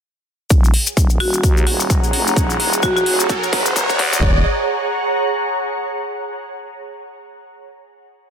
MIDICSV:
0, 0, Header, 1, 6, 480
1, 0, Start_track
1, 0, Key_signature, -6, "minor"
1, 0, Tempo, 465116
1, 520, Time_signature, 4, 2, 24, 8
1, 8566, End_track
2, 0, Start_track
2, 0, Title_t, "Ambient pad"
2, 0, Program_c, 0, 92
2, 521, Note_on_c, 0, 68, 81
2, 666, Note_on_c, 0, 78, 73
2, 779, Note_on_c, 0, 73, 77
2, 1016, Note_on_c, 0, 82, 80
2, 4348, Note_off_c, 0, 68, 0
2, 4360, Note_off_c, 0, 73, 0
2, 4360, Note_off_c, 0, 78, 0
2, 4360, Note_off_c, 0, 82, 0
2, 4361, Note_on_c, 0, 68, 80
2, 4444, Note_on_c, 0, 73, 83
2, 4521, Note_on_c, 0, 78, 82
2, 4582, Note_on_c, 0, 82, 81
2, 6239, Note_off_c, 0, 68, 0
2, 6239, Note_off_c, 0, 73, 0
2, 6240, Note_off_c, 0, 78, 0
2, 6240, Note_off_c, 0, 82, 0
2, 8566, End_track
3, 0, Start_track
3, 0, Title_t, "Marimba"
3, 0, Program_c, 1, 12
3, 1241, Note_on_c, 1, 66, 86
3, 1395, Note_off_c, 1, 66, 0
3, 2920, Note_on_c, 1, 66, 88
3, 3009, Note_off_c, 1, 66, 0
3, 3059, Note_on_c, 1, 66, 73
3, 3124, Note_off_c, 1, 66, 0
3, 8566, End_track
4, 0, Start_track
4, 0, Title_t, "FM bass"
4, 0, Program_c, 2, 39
4, 520, Note_on_c, 2, 27, 95
4, 744, Note_off_c, 2, 27, 0
4, 1000, Note_on_c, 2, 27, 95
4, 1118, Note_off_c, 2, 27, 0
4, 1140, Note_on_c, 2, 27, 96
4, 1224, Note_off_c, 2, 27, 0
4, 1240, Note_on_c, 2, 27, 98
4, 1464, Note_off_c, 2, 27, 0
4, 1480, Note_on_c, 2, 39, 95
4, 1704, Note_off_c, 2, 39, 0
4, 1720, Note_on_c, 2, 27, 93
4, 2077, Note_off_c, 2, 27, 0
4, 2099, Note_on_c, 2, 27, 92
4, 2184, Note_off_c, 2, 27, 0
4, 2199, Note_on_c, 2, 29, 94
4, 2424, Note_off_c, 2, 29, 0
4, 2440, Note_on_c, 2, 27, 96
4, 2664, Note_off_c, 2, 27, 0
4, 2680, Note_on_c, 2, 27, 96
4, 3144, Note_off_c, 2, 27, 0
4, 3159, Note_on_c, 2, 27, 97
4, 3384, Note_off_c, 2, 27, 0
4, 3640, Note_on_c, 2, 27, 96
4, 3997, Note_off_c, 2, 27, 0
4, 4020, Note_on_c, 2, 39, 99
4, 4344, Note_off_c, 2, 39, 0
4, 4360, Note_on_c, 2, 27, 98
4, 4583, Note_off_c, 2, 27, 0
4, 8566, End_track
5, 0, Start_track
5, 0, Title_t, "Riser"
5, 0, Program_c, 3, 103
5, 520, Note_on_c, 3, 60, 76
5, 4360, Note_off_c, 3, 60, 0
5, 8566, End_track
6, 0, Start_track
6, 0, Title_t, "Drums"
6, 518, Note_on_c, 9, 70, 61
6, 520, Note_on_c, 9, 36, 107
6, 520, Note_on_c, 9, 42, 75
6, 621, Note_off_c, 9, 70, 0
6, 623, Note_off_c, 9, 36, 0
6, 623, Note_off_c, 9, 42, 0
6, 660, Note_on_c, 9, 42, 36
6, 664, Note_on_c, 9, 70, 38
6, 760, Note_on_c, 9, 46, 99
6, 763, Note_off_c, 9, 42, 0
6, 767, Note_off_c, 9, 70, 0
6, 863, Note_off_c, 9, 46, 0
6, 894, Note_on_c, 9, 70, 74
6, 901, Note_on_c, 9, 42, 37
6, 997, Note_off_c, 9, 70, 0
6, 1000, Note_off_c, 9, 42, 0
6, 1000, Note_on_c, 9, 36, 104
6, 1000, Note_on_c, 9, 42, 83
6, 1003, Note_on_c, 9, 70, 59
6, 1103, Note_off_c, 9, 36, 0
6, 1103, Note_off_c, 9, 42, 0
6, 1107, Note_off_c, 9, 70, 0
6, 1134, Note_on_c, 9, 70, 38
6, 1140, Note_on_c, 9, 42, 37
6, 1237, Note_off_c, 9, 70, 0
6, 1240, Note_on_c, 9, 46, 99
6, 1243, Note_off_c, 9, 42, 0
6, 1343, Note_off_c, 9, 46, 0
6, 1378, Note_on_c, 9, 70, 71
6, 1381, Note_on_c, 9, 42, 54
6, 1480, Note_on_c, 9, 36, 107
6, 1481, Note_off_c, 9, 42, 0
6, 1481, Note_off_c, 9, 70, 0
6, 1481, Note_on_c, 9, 42, 80
6, 1482, Note_on_c, 9, 70, 64
6, 1583, Note_off_c, 9, 36, 0
6, 1584, Note_off_c, 9, 42, 0
6, 1585, Note_off_c, 9, 70, 0
6, 1622, Note_on_c, 9, 70, 40
6, 1720, Note_on_c, 9, 46, 98
6, 1725, Note_off_c, 9, 70, 0
6, 1823, Note_off_c, 9, 46, 0
6, 1858, Note_on_c, 9, 70, 81
6, 1960, Note_on_c, 9, 36, 98
6, 1960, Note_on_c, 9, 42, 83
6, 1961, Note_off_c, 9, 70, 0
6, 1962, Note_on_c, 9, 70, 70
6, 2063, Note_off_c, 9, 36, 0
6, 2064, Note_off_c, 9, 42, 0
6, 2065, Note_off_c, 9, 70, 0
6, 2100, Note_on_c, 9, 42, 51
6, 2104, Note_on_c, 9, 70, 39
6, 2200, Note_on_c, 9, 46, 104
6, 2203, Note_off_c, 9, 42, 0
6, 2207, Note_off_c, 9, 70, 0
6, 2303, Note_off_c, 9, 46, 0
6, 2347, Note_on_c, 9, 70, 69
6, 2440, Note_on_c, 9, 36, 103
6, 2440, Note_on_c, 9, 42, 78
6, 2447, Note_off_c, 9, 70, 0
6, 2447, Note_on_c, 9, 70, 61
6, 2543, Note_off_c, 9, 36, 0
6, 2543, Note_off_c, 9, 42, 0
6, 2550, Note_off_c, 9, 70, 0
6, 2581, Note_on_c, 9, 42, 36
6, 2581, Note_on_c, 9, 70, 42
6, 2680, Note_on_c, 9, 46, 107
6, 2684, Note_off_c, 9, 42, 0
6, 2684, Note_off_c, 9, 70, 0
6, 2783, Note_off_c, 9, 46, 0
6, 2821, Note_on_c, 9, 42, 37
6, 2821, Note_on_c, 9, 70, 88
6, 2915, Note_off_c, 9, 70, 0
6, 2915, Note_on_c, 9, 70, 68
6, 2920, Note_off_c, 9, 42, 0
6, 2920, Note_on_c, 9, 36, 102
6, 2920, Note_on_c, 9, 42, 84
6, 3019, Note_off_c, 9, 70, 0
6, 3023, Note_off_c, 9, 36, 0
6, 3024, Note_off_c, 9, 42, 0
6, 3060, Note_on_c, 9, 42, 38
6, 3065, Note_on_c, 9, 70, 41
6, 3160, Note_on_c, 9, 46, 108
6, 3163, Note_off_c, 9, 42, 0
6, 3168, Note_off_c, 9, 70, 0
6, 3263, Note_off_c, 9, 46, 0
6, 3300, Note_on_c, 9, 42, 54
6, 3302, Note_on_c, 9, 70, 74
6, 3398, Note_off_c, 9, 70, 0
6, 3398, Note_on_c, 9, 70, 62
6, 3400, Note_off_c, 9, 42, 0
6, 3400, Note_on_c, 9, 36, 99
6, 3400, Note_on_c, 9, 42, 81
6, 3501, Note_off_c, 9, 70, 0
6, 3503, Note_off_c, 9, 36, 0
6, 3503, Note_off_c, 9, 42, 0
6, 3543, Note_on_c, 9, 70, 40
6, 3640, Note_on_c, 9, 36, 102
6, 3640, Note_on_c, 9, 46, 112
6, 3646, Note_off_c, 9, 70, 0
6, 3743, Note_off_c, 9, 36, 0
6, 3743, Note_off_c, 9, 46, 0
6, 3776, Note_on_c, 9, 70, 82
6, 3879, Note_off_c, 9, 70, 0
6, 3880, Note_on_c, 9, 36, 104
6, 3880, Note_on_c, 9, 42, 83
6, 3881, Note_on_c, 9, 70, 72
6, 3983, Note_off_c, 9, 36, 0
6, 3983, Note_off_c, 9, 42, 0
6, 3984, Note_off_c, 9, 70, 0
6, 4020, Note_on_c, 9, 36, 92
6, 4020, Note_on_c, 9, 42, 51
6, 4020, Note_on_c, 9, 70, 43
6, 4120, Note_off_c, 9, 36, 0
6, 4120, Note_on_c, 9, 36, 106
6, 4120, Note_on_c, 9, 46, 113
6, 4123, Note_off_c, 9, 42, 0
6, 4123, Note_off_c, 9, 70, 0
6, 4223, Note_off_c, 9, 36, 0
6, 4223, Note_off_c, 9, 46, 0
6, 4260, Note_on_c, 9, 36, 96
6, 4262, Note_on_c, 9, 70, 73
6, 4360, Note_off_c, 9, 36, 0
6, 4360, Note_on_c, 9, 36, 109
6, 4365, Note_off_c, 9, 70, 0
6, 4464, Note_off_c, 9, 36, 0
6, 8566, End_track
0, 0, End_of_file